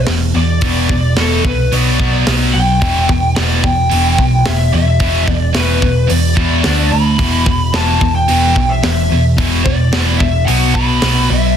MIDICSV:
0, 0, Header, 1, 5, 480
1, 0, Start_track
1, 0, Key_signature, 1, "minor"
1, 0, Tempo, 547945
1, 537, Time_signature, 4, 2, 24, 8
1, 10134, End_track
2, 0, Start_track
2, 0, Title_t, "Lead electric guitar"
2, 0, Program_c, 0, 29
2, 319, Note_on_c, 0, 74, 98
2, 1048, Note_on_c, 0, 69, 84
2, 1049, Note_off_c, 0, 74, 0
2, 1276, Note_off_c, 0, 69, 0
2, 1279, Note_on_c, 0, 71, 81
2, 1515, Note_off_c, 0, 71, 0
2, 1518, Note_on_c, 0, 74, 81
2, 1955, Note_off_c, 0, 74, 0
2, 2221, Note_on_c, 0, 79, 85
2, 2905, Note_off_c, 0, 79, 0
2, 2947, Note_on_c, 0, 74, 83
2, 3167, Note_off_c, 0, 74, 0
2, 3186, Note_on_c, 0, 79, 90
2, 3912, Note_on_c, 0, 76, 90
2, 3925, Note_off_c, 0, 79, 0
2, 4130, Note_off_c, 0, 76, 0
2, 4150, Note_on_c, 0, 76, 83
2, 4641, Note_off_c, 0, 76, 0
2, 4641, Note_on_c, 0, 74, 83
2, 4831, Note_off_c, 0, 74, 0
2, 4875, Note_on_c, 0, 71, 85
2, 5340, Note_on_c, 0, 74, 86
2, 5362, Note_off_c, 0, 71, 0
2, 6061, Note_on_c, 0, 83, 85
2, 6082, Note_off_c, 0, 74, 0
2, 6791, Note_on_c, 0, 81, 94
2, 6802, Note_off_c, 0, 83, 0
2, 7137, Note_off_c, 0, 81, 0
2, 7140, Note_on_c, 0, 79, 95
2, 7619, Note_on_c, 0, 76, 66
2, 7634, Note_off_c, 0, 79, 0
2, 7740, Note_off_c, 0, 76, 0
2, 7751, Note_on_c, 0, 76, 82
2, 8080, Note_off_c, 0, 76, 0
2, 8448, Note_on_c, 0, 74, 85
2, 8914, Note_off_c, 0, 74, 0
2, 8917, Note_on_c, 0, 76, 96
2, 9153, Note_on_c, 0, 78, 86
2, 9175, Note_off_c, 0, 76, 0
2, 9409, Note_on_c, 0, 83, 98
2, 9413, Note_off_c, 0, 78, 0
2, 9895, Note_on_c, 0, 76, 90
2, 9906, Note_off_c, 0, 83, 0
2, 10134, Note_off_c, 0, 76, 0
2, 10134, End_track
3, 0, Start_track
3, 0, Title_t, "Distorted electric guitar"
3, 0, Program_c, 1, 30
3, 62, Note_on_c, 1, 40, 64
3, 70, Note_on_c, 1, 47, 66
3, 276, Note_off_c, 1, 40, 0
3, 280, Note_off_c, 1, 47, 0
3, 300, Note_on_c, 1, 40, 63
3, 300, Note_on_c, 1, 47, 70
3, 515, Note_off_c, 1, 40, 0
3, 515, Note_off_c, 1, 47, 0
3, 538, Note_on_c, 1, 40, 76
3, 544, Note_on_c, 1, 47, 86
3, 554, Note_on_c, 1, 52, 89
3, 763, Note_off_c, 1, 40, 0
3, 766, Note_off_c, 1, 47, 0
3, 771, Note_off_c, 1, 52, 0
3, 789, Note_on_c, 1, 40, 67
3, 791, Note_on_c, 1, 47, 72
3, 999, Note_off_c, 1, 40, 0
3, 1000, Note_off_c, 1, 47, 0
3, 1023, Note_on_c, 1, 40, 84
3, 1033, Note_on_c, 1, 47, 90
3, 1035, Note_on_c, 1, 52, 92
3, 1246, Note_off_c, 1, 40, 0
3, 1251, Note_off_c, 1, 47, 0
3, 1252, Note_off_c, 1, 52, 0
3, 1264, Note_on_c, 1, 40, 65
3, 1267, Note_on_c, 1, 47, 64
3, 1477, Note_off_c, 1, 40, 0
3, 1478, Note_off_c, 1, 47, 0
3, 1506, Note_on_c, 1, 47, 84
3, 1512, Note_on_c, 1, 54, 86
3, 1513, Note_on_c, 1, 59, 89
3, 1727, Note_off_c, 1, 47, 0
3, 1730, Note_off_c, 1, 54, 0
3, 1731, Note_off_c, 1, 59, 0
3, 1741, Note_on_c, 1, 47, 84
3, 1749, Note_on_c, 1, 54, 90
3, 1753, Note_on_c, 1, 59, 99
3, 1965, Note_off_c, 1, 47, 0
3, 1969, Note_off_c, 1, 54, 0
3, 1971, Note_off_c, 1, 59, 0
3, 1988, Note_on_c, 1, 47, 80
3, 1997, Note_on_c, 1, 54, 87
3, 1999, Note_on_c, 1, 59, 91
3, 2209, Note_off_c, 1, 47, 0
3, 2213, Note_off_c, 1, 54, 0
3, 2214, Note_off_c, 1, 59, 0
3, 2220, Note_on_c, 1, 47, 72
3, 2226, Note_on_c, 1, 54, 70
3, 2435, Note_off_c, 1, 47, 0
3, 2438, Note_off_c, 1, 54, 0
3, 2467, Note_on_c, 1, 40, 78
3, 2472, Note_on_c, 1, 47, 85
3, 2479, Note_on_c, 1, 52, 96
3, 2689, Note_off_c, 1, 40, 0
3, 2691, Note_off_c, 1, 47, 0
3, 2695, Note_off_c, 1, 52, 0
3, 2706, Note_on_c, 1, 40, 65
3, 2710, Note_on_c, 1, 47, 73
3, 2919, Note_off_c, 1, 40, 0
3, 2920, Note_off_c, 1, 47, 0
3, 2950, Note_on_c, 1, 40, 90
3, 2955, Note_on_c, 1, 47, 97
3, 2960, Note_on_c, 1, 52, 98
3, 3170, Note_off_c, 1, 40, 0
3, 3173, Note_off_c, 1, 47, 0
3, 3175, Note_off_c, 1, 52, 0
3, 3187, Note_on_c, 1, 40, 64
3, 3191, Note_on_c, 1, 47, 70
3, 3399, Note_off_c, 1, 40, 0
3, 3401, Note_off_c, 1, 47, 0
3, 3432, Note_on_c, 1, 40, 89
3, 3441, Note_on_c, 1, 47, 94
3, 3446, Note_on_c, 1, 52, 97
3, 3651, Note_off_c, 1, 40, 0
3, 3656, Note_off_c, 1, 47, 0
3, 3658, Note_off_c, 1, 52, 0
3, 3666, Note_on_c, 1, 40, 68
3, 3673, Note_on_c, 1, 47, 80
3, 3879, Note_off_c, 1, 40, 0
3, 3882, Note_off_c, 1, 47, 0
3, 3908, Note_on_c, 1, 40, 69
3, 3911, Note_on_c, 1, 47, 81
3, 4120, Note_off_c, 1, 40, 0
3, 4122, Note_off_c, 1, 47, 0
3, 4147, Note_on_c, 1, 40, 64
3, 4153, Note_on_c, 1, 47, 75
3, 4360, Note_off_c, 1, 40, 0
3, 4363, Note_off_c, 1, 47, 0
3, 4388, Note_on_c, 1, 40, 83
3, 4397, Note_on_c, 1, 47, 85
3, 4404, Note_on_c, 1, 52, 99
3, 4610, Note_off_c, 1, 40, 0
3, 4614, Note_off_c, 1, 47, 0
3, 4618, Note_off_c, 1, 52, 0
3, 4626, Note_on_c, 1, 40, 64
3, 4630, Note_on_c, 1, 47, 69
3, 4839, Note_off_c, 1, 40, 0
3, 4841, Note_off_c, 1, 47, 0
3, 4858, Note_on_c, 1, 40, 82
3, 4865, Note_on_c, 1, 47, 99
3, 4872, Note_on_c, 1, 52, 101
3, 5085, Note_off_c, 1, 40, 0
3, 5088, Note_off_c, 1, 47, 0
3, 5092, Note_off_c, 1, 52, 0
3, 5097, Note_on_c, 1, 40, 67
3, 5101, Note_on_c, 1, 47, 76
3, 5315, Note_off_c, 1, 40, 0
3, 5317, Note_off_c, 1, 47, 0
3, 5330, Note_on_c, 1, 40, 68
3, 5336, Note_on_c, 1, 47, 76
3, 5552, Note_off_c, 1, 40, 0
3, 5555, Note_off_c, 1, 47, 0
3, 5579, Note_on_c, 1, 40, 83
3, 5585, Note_on_c, 1, 47, 88
3, 5593, Note_on_c, 1, 52, 90
3, 5806, Note_off_c, 1, 40, 0
3, 5806, Note_off_c, 1, 47, 0
3, 5810, Note_on_c, 1, 50, 82
3, 5813, Note_off_c, 1, 52, 0
3, 5818, Note_on_c, 1, 57, 79
3, 5821, Note_on_c, 1, 62, 80
3, 6041, Note_off_c, 1, 50, 0
3, 6045, Note_off_c, 1, 57, 0
3, 6047, Note_off_c, 1, 62, 0
3, 6059, Note_on_c, 1, 50, 59
3, 6061, Note_on_c, 1, 57, 76
3, 6276, Note_off_c, 1, 50, 0
3, 6277, Note_off_c, 1, 57, 0
3, 6290, Note_on_c, 1, 40, 77
3, 6297, Note_on_c, 1, 47, 83
3, 6302, Note_on_c, 1, 52, 95
3, 6521, Note_off_c, 1, 40, 0
3, 6524, Note_off_c, 1, 47, 0
3, 6527, Note_off_c, 1, 52, 0
3, 6536, Note_on_c, 1, 40, 63
3, 6537, Note_on_c, 1, 47, 74
3, 6754, Note_off_c, 1, 40, 0
3, 6755, Note_off_c, 1, 47, 0
3, 6770, Note_on_c, 1, 40, 89
3, 6775, Note_on_c, 1, 47, 78
3, 6782, Note_on_c, 1, 52, 86
3, 6998, Note_off_c, 1, 40, 0
3, 7001, Note_off_c, 1, 47, 0
3, 7007, Note_off_c, 1, 52, 0
3, 7009, Note_on_c, 1, 40, 65
3, 7011, Note_on_c, 1, 47, 71
3, 7231, Note_off_c, 1, 40, 0
3, 7232, Note_off_c, 1, 47, 0
3, 7253, Note_on_c, 1, 40, 76
3, 7256, Note_on_c, 1, 47, 86
3, 7265, Note_on_c, 1, 52, 94
3, 7482, Note_off_c, 1, 40, 0
3, 7484, Note_off_c, 1, 47, 0
3, 7488, Note_off_c, 1, 52, 0
3, 7493, Note_on_c, 1, 40, 64
3, 7495, Note_on_c, 1, 47, 74
3, 7712, Note_off_c, 1, 40, 0
3, 7714, Note_off_c, 1, 47, 0
3, 7732, Note_on_c, 1, 40, 69
3, 7736, Note_on_c, 1, 47, 78
3, 7952, Note_off_c, 1, 40, 0
3, 7954, Note_off_c, 1, 47, 0
3, 7968, Note_on_c, 1, 40, 62
3, 7970, Note_on_c, 1, 47, 70
3, 8190, Note_off_c, 1, 40, 0
3, 8191, Note_off_c, 1, 47, 0
3, 8207, Note_on_c, 1, 40, 75
3, 8214, Note_on_c, 1, 47, 96
3, 8218, Note_on_c, 1, 52, 95
3, 8439, Note_off_c, 1, 40, 0
3, 8442, Note_off_c, 1, 47, 0
3, 8444, Note_off_c, 1, 52, 0
3, 8448, Note_on_c, 1, 40, 64
3, 8452, Note_on_c, 1, 47, 80
3, 8669, Note_off_c, 1, 40, 0
3, 8671, Note_off_c, 1, 47, 0
3, 8689, Note_on_c, 1, 40, 86
3, 8699, Note_on_c, 1, 47, 88
3, 8703, Note_on_c, 1, 52, 99
3, 8919, Note_off_c, 1, 40, 0
3, 8924, Note_off_c, 1, 47, 0
3, 8926, Note_off_c, 1, 52, 0
3, 8937, Note_on_c, 1, 40, 70
3, 8939, Note_on_c, 1, 47, 67
3, 9153, Note_off_c, 1, 40, 0
3, 9154, Note_off_c, 1, 47, 0
3, 9166, Note_on_c, 1, 47, 79
3, 9175, Note_on_c, 1, 54, 84
3, 9181, Note_on_c, 1, 59, 95
3, 9397, Note_off_c, 1, 47, 0
3, 9401, Note_off_c, 1, 54, 0
3, 9405, Note_off_c, 1, 59, 0
3, 9412, Note_on_c, 1, 47, 90
3, 9420, Note_on_c, 1, 54, 90
3, 9426, Note_on_c, 1, 59, 104
3, 9640, Note_off_c, 1, 47, 0
3, 9644, Note_off_c, 1, 54, 0
3, 9647, Note_off_c, 1, 59, 0
3, 9652, Note_on_c, 1, 47, 76
3, 9661, Note_on_c, 1, 54, 96
3, 9666, Note_on_c, 1, 59, 94
3, 9880, Note_off_c, 1, 47, 0
3, 9884, Note_off_c, 1, 54, 0
3, 9886, Note_off_c, 1, 59, 0
3, 9891, Note_on_c, 1, 47, 62
3, 9896, Note_on_c, 1, 54, 77
3, 10109, Note_off_c, 1, 47, 0
3, 10112, Note_off_c, 1, 54, 0
3, 10134, End_track
4, 0, Start_track
4, 0, Title_t, "Picked electric bass"
4, 0, Program_c, 2, 34
4, 66, Note_on_c, 2, 28, 87
4, 279, Note_off_c, 2, 28, 0
4, 308, Note_on_c, 2, 40, 81
4, 520, Note_off_c, 2, 40, 0
4, 541, Note_on_c, 2, 28, 85
4, 756, Note_off_c, 2, 28, 0
4, 783, Note_on_c, 2, 28, 80
4, 997, Note_off_c, 2, 28, 0
4, 1023, Note_on_c, 2, 28, 80
4, 1237, Note_off_c, 2, 28, 0
4, 1267, Note_on_c, 2, 36, 81
4, 1479, Note_off_c, 2, 36, 0
4, 1512, Note_on_c, 2, 35, 96
4, 1950, Note_off_c, 2, 35, 0
4, 1991, Note_on_c, 2, 35, 95
4, 2202, Note_off_c, 2, 35, 0
4, 2230, Note_on_c, 2, 35, 75
4, 2441, Note_off_c, 2, 35, 0
4, 2470, Note_on_c, 2, 28, 82
4, 2682, Note_off_c, 2, 28, 0
4, 2709, Note_on_c, 2, 28, 85
4, 2921, Note_off_c, 2, 28, 0
4, 2959, Note_on_c, 2, 28, 84
4, 3167, Note_off_c, 2, 28, 0
4, 3187, Note_on_c, 2, 28, 85
4, 3401, Note_off_c, 2, 28, 0
4, 3437, Note_on_c, 2, 28, 100
4, 3646, Note_off_c, 2, 28, 0
4, 3670, Note_on_c, 2, 35, 82
4, 3882, Note_off_c, 2, 35, 0
4, 3916, Note_on_c, 2, 28, 90
4, 4126, Note_off_c, 2, 28, 0
4, 4152, Note_on_c, 2, 40, 80
4, 4363, Note_off_c, 2, 40, 0
4, 4381, Note_on_c, 2, 28, 87
4, 4598, Note_off_c, 2, 28, 0
4, 4624, Note_on_c, 2, 28, 81
4, 4839, Note_off_c, 2, 28, 0
4, 4871, Note_on_c, 2, 28, 82
4, 5083, Note_off_c, 2, 28, 0
4, 5105, Note_on_c, 2, 28, 80
4, 5320, Note_off_c, 2, 28, 0
4, 5347, Note_on_c, 2, 40, 94
4, 5789, Note_off_c, 2, 40, 0
4, 5832, Note_on_c, 2, 38, 92
4, 6044, Note_off_c, 2, 38, 0
4, 6065, Note_on_c, 2, 38, 81
4, 6304, Note_on_c, 2, 28, 85
4, 6317, Note_off_c, 2, 38, 0
4, 6519, Note_off_c, 2, 28, 0
4, 6544, Note_on_c, 2, 28, 83
4, 6759, Note_off_c, 2, 28, 0
4, 6779, Note_on_c, 2, 28, 77
4, 6997, Note_off_c, 2, 28, 0
4, 7021, Note_on_c, 2, 28, 85
4, 7238, Note_off_c, 2, 28, 0
4, 7267, Note_on_c, 2, 28, 95
4, 7480, Note_off_c, 2, 28, 0
4, 7503, Note_on_c, 2, 35, 84
4, 7718, Note_off_c, 2, 35, 0
4, 7748, Note_on_c, 2, 28, 88
4, 7961, Note_off_c, 2, 28, 0
4, 7984, Note_on_c, 2, 40, 80
4, 8198, Note_off_c, 2, 40, 0
4, 8221, Note_on_c, 2, 28, 82
4, 8437, Note_off_c, 2, 28, 0
4, 8463, Note_on_c, 2, 28, 81
4, 8678, Note_off_c, 2, 28, 0
4, 8706, Note_on_c, 2, 28, 82
4, 8919, Note_off_c, 2, 28, 0
4, 8942, Note_on_c, 2, 28, 84
4, 9156, Note_off_c, 2, 28, 0
4, 9183, Note_on_c, 2, 35, 103
4, 9625, Note_off_c, 2, 35, 0
4, 9655, Note_on_c, 2, 35, 88
4, 9872, Note_off_c, 2, 35, 0
4, 9900, Note_on_c, 2, 35, 89
4, 10114, Note_off_c, 2, 35, 0
4, 10134, End_track
5, 0, Start_track
5, 0, Title_t, "Drums"
5, 57, Note_on_c, 9, 46, 51
5, 58, Note_on_c, 9, 38, 102
5, 145, Note_off_c, 9, 46, 0
5, 146, Note_off_c, 9, 38, 0
5, 537, Note_on_c, 9, 46, 55
5, 542, Note_on_c, 9, 36, 105
5, 624, Note_off_c, 9, 46, 0
5, 630, Note_off_c, 9, 36, 0
5, 783, Note_on_c, 9, 36, 86
5, 870, Note_off_c, 9, 36, 0
5, 1021, Note_on_c, 9, 46, 55
5, 1022, Note_on_c, 9, 38, 93
5, 1108, Note_off_c, 9, 46, 0
5, 1109, Note_off_c, 9, 38, 0
5, 1267, Note_on_c, 9, 36, 80
5, 1354, Note_off_c, 9, 36, 0
5, 1510, Note_on_c, 9, 46, 53
5, 1598, Note_off_c, 9, 46, 0
5, 1748, Note_on_c, 9, 36, 79
5, 1835, Note_off_c, 9, 36, 0
5, 1986, Note_on_c, 9, 46, 54
5, 1987, Note_on_c, 9, 38, 105
5, 2074, Note_off_c, 9, 46, 0
5, 2075, Note_off_c, 9, 38, 0
5, 2468, Note_on_c, 9, 46, 47
5, 2469, Note_on_c, 9, 36, 106
5, 2555, Note_off_c, 9, 46, 0
5, 2556, Note_off_c, 9, 36, 0
5, 2708, Note_on_c, 9, 36, 84
5, 2796, Note_off_c, 9, 36, 0
5, 2946, Note_on_c, 9, 46, 52
5, 2947, Note_on_c, 9, 38, 112
5, 3034, Note_off_c, 9, 46, 0
5, 3035, Note_off_c, 9, 38, 0
5, 3187, Note_on_c, 9, 36, 80
5, 3274, Note_off_c, 9, 36, 0
5, 3428, Note_on_c, 9, 46, 53
5, 3515, Note_off_c, 9, 46, 0
5, 3666, Note_on_c, 9, 36, 80
5, 3753, Note_off_c, 9, 36, 0
5, 3902, Note_on_c, 9, 46, 50
5, 3903, Note_on_c, 9, 38, 104
5, 3990, Note_off_c, 9, 46, 0
5, 3991, Note_off_c, 9, 38, 0
5, 4378, Note_on_c, 9, 46, 49
5, 4382, Note_on_c, 9, 36, 103
5, 4466, Note_off_c, 9, 46, 0
5, 4469, Note_off_c, 9, 36, 0
5, 4621, Note_on_c, 9, 36, 83
5, 4709, Note_off_c, 9, 36, 0
5, 4857, Note_on_c, 9, 46, 55
5, 4858, Note_on_c, 9, 38, 100
5, 4945, Note_off_c, 9, 46, 0
5, 4946, Note_off_c, 9, 38, 0
5, 5100, Note_on_c, 9, 36, 83
5, 5188, Note_off_c, 9, 36, 0
5, 5340, Note_on_c, 9, 46, 55
5, 5427, Note_off_c, 9, 46, 0
5, 5578, Note_on_c, 9, 36, 78
5, 5666, Note_off_c, 9, 36, 0
5, 5816, Note_on_c, 9, 46, 52
5, 5817, Note_on_c, 9, 38, 95
5, 5904, Note_off_c, 9, 46, 0
5, 5905, Note_off_c, 9, 38, 0
5, 6297, Note_on_c, 9, 46, 55
5, 6299, Note_on_c, 9, 36, 99
5, 6385, Note_off_c, 9, 46, 0
5, 6386, Note_off_c, 9, 36, 0
5, 6538, Note_on_c, 9, 36, 86
5, 6625, Note_off_c, 9, 36, 0
5, 6778, Note_on_c, 9, 38, 112
5, 6778, Note_on_c, 9, 46, 49
5, 6865, Note_off_c, 9, 46, 0
5, 6866, Note_off_c, 9, 38, 0
5, 7019, Note_on_c, 9, 36, 80
5, 7106, Note_off_c, 9, 36, 0
5, 7257, Note_on_c, 9, 46, 50
5, 7344, Note_off_c, 9, 46, 0
5, 7499, Note_on_c, 9, 36, 78
5, 7586, Note_off_c, 9, 36, 0
5, 7738, Note_on_c, 9, 46, 48
5, 7739, Note_on_c, 9, 38, 99
5, 7826, Note_off_c, 9, 46, 0
5, 7827, Note_off_c, 9, 38, 0
5, 8219, Note_on_c, 9, 36, 95
5, 8220, Note_on_c, 9, 46, 48
5, 8307, Note_off_c, 9, 36, 0
5, 8307, Note_off_c, 9, 46, 0
5, 8459, Note_on_c, 9, 36, 84
5, 8546, Note_off_c, 9, 36, 0
5, 8695, Note_on_c, 9, 46, 51
5, 8696, Note_on_c, 9, 38, 105
5, 8783, Note_off_c, 9, 46, 0
5, 8784, Note_off_c, 9, 38, 0
5, 8939, Note_on_c, 9, 36, 83
5, 9026, Note_off_c, 9, 36, 0
5, 9179, Note_on_c, 9, 46, 58
5, 9266, Note_off_c, 9, 46, 0
5, 9417, Note_on_c, 9, 36, 75
5, 9505, Note_off_c, 9, 36, 0
5, 9653, Note_on_c, 9, 46, 58
5, 9654, Note_on_c, 9, 38, 95
5, 9741, Note_off_c, 9, 46, 0
5, 9742, Note_off_c, 9, 38, 0
5, 10134, End_track
0, 0, End_of_file